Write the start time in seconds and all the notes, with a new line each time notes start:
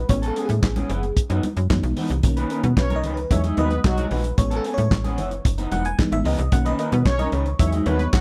Already playing: B4
0.09 A1 G#3 B3 C#4 C#5, muted clean electric guitar stroke, kick, closed hi-hat, muted conga
0.22 B3 C#4 A4, closed hi-hat
0.28 A4
0.36 B3 C#4 G#4, closed hi-hat
0.45 G#4, muted clean electric guitar stroke, high conga
0.50 A2, closed hi-hat
0.63 A1, muted clean electric guitar stroke, kick, snare, clap, muted conga
0.76 B3 C#4 G#4, closed hi-hat, muted conga, high conga
0.89 F#1 E3 B3 E4, closed hi-hat, low conga
1.03 muted clean electric guitar stroke, closed hi-hat
1.16 muted clean electric guitar stroke, kick, closed hi-hat
1.30 F#2 E3 B3 D#4, closed hi-hat, muted conga
1.43 muted clean electric guitar stroke, closed hi-hat, high conga
1.57 F#2, muted clean electric guitar stroke, closed hi-hat
1.70 F#2 E3 G#3 B3 D#4, muted clean electric guitar stroke, kick, snare, clap, muted conga, high conga
1.83 B1, muted clean electric guitar stroke, closed hi-hat, muted conga, high conga
1.97 E3 B3 D#4, open hi-hat, low conga
2.10 C2, muted clean electric guitar stroke, closed hi-hat
2.23 B1 D#3 A#3 C#4, muted clean electric guitar stroke, kick, closed hi-hat, muted conga
2.37 C#4 D#4 B4, closed hi-hat, muted conga
2.50 A#3 C#4 D#4 A#4 B4, closed hi-hat
2.64 B2 B3, muted clean electric guitar stroke, closed hi-hat, high conga
2.77 B1 C#4 B4 C#5, muted clean electric guitar stroke, kick, snare, clap, muted conga
2.90 C#4 D#4 A#4, closed hi-hat, muted conga, high conga
2.96 D#5
3.03 C#2 C#4 D#4 B4, closed hi-hat, low conga
3.14 B4, muted clean electric guitar stroke, closed hi-hat
3.30 E2 F#3 G#3 C#4 D#4 C#5 E5, muted clean electric guitar stroke, kick, closed hi-hat, muted conga
3.44 G#3 D#4 G#4, closed hi-hat, muted conga
3.57 D#2 G#3 B3 D#4 F#4 B4 D#5, closed hi-hat, high conga
3.70 muted clean electric guitar stroke, closed hi-hat
3.84 B1 F#3 F#4, muted clean electric guitar stroke, kick, snare, clap, high conga
3.97 G#3 D#4 F#4, closed hi-hat, muted conga, high conga
4.10 A#1 G#3 D#4 F#4 B4, open hi-hat, low conga
4.24 muted clean electric guitar stroke, closed hi-hat
4.37 A1 G#3 B3 C#4 C#5, muted clean electric guitar stroke, kick, closed hi-hat
4.51 B3 C#4 A4, closed hi-hat
4.56 A4
4.64 B3 C#4 G#4, closed hi-hat
4.74 C#5, muted clean electric guitar stroke, closed hi-hat, high conga
4.78 A2
4.91 A1, muted clean electric guitar stroke, kick, snare, clap
5.04 B3 C#4 G#4, closed hi-hat, muted conga, high conga
5.17 F#1 E3 B3 E4, closed hi-hat, low conga
5.31 muted clean electric guitar stroke, closed hi-hat
5.45 F#1, muted clean electric guitar stroke, kick, closed hi-hat, muted conga
5.58 E3 B3 D#4, closed hi-hat, muted conga
5.71 E1 E3 B3 D#4 F#5, closed hi-hat, high conga
5.85 G#5, muted clean electric guitar stroke, closed hi-hat
5.98 E3 G#3 B3 D#4, muted clean electric guitar stroke, kick, snare, clap, high conga
6.12 G#1 E5, muted clean electric guitar stroke, closed hi-hat, muted conga, high conga
6.25 C#2 E3 B3 D#4 D#5, open hi-hat, low conga
6.38 C2, muted clean electric guitar stroke, closed hi-hat
6.52 B1 D#3 A#3 C#4 F#5, muted clean electric guitar stroke, kick, closed hi-hat
6.65 C#4 D#4 B4 D#5, closed hi-hat, muted conga
6.79 A#3 C#4 D#4 A#4 B4 D#5, closed hi-hat
6.92 B2 B3 B4, muted clean electric guitar stroke, closed hi-hat, high conga
7.05 B1 C#4 C#5, muted clean electric guitar stroke, kick, snare, clap, muted conga
7.19 C#4 D#4 A#4 D#5, closed hi-hat, muted conga, high conga
7.32 C#2 C#4 D#4 B4 C#5, closed hi-hat, low conga
7.46 muted clean electric guitar stroke, closed hi-hat
7.59 E2 F#3 G#3 C#4 D#4 C#5 E5, muted clean electric guitar stroke, kick, closed hi-hat
7.72 G#3 D#4 G#4, closed hi-hat, muted conga
7.86 D#2 G#3 B3 D#4 F#4 B4 C#5, closed hi-hat, high conga
7.99 muted clean electric guitar stroke, closed hi-hat
8.13 B1 F#3 F#4, muted clean electric guitar stroke, kick, snare, clap, muted conga, high conga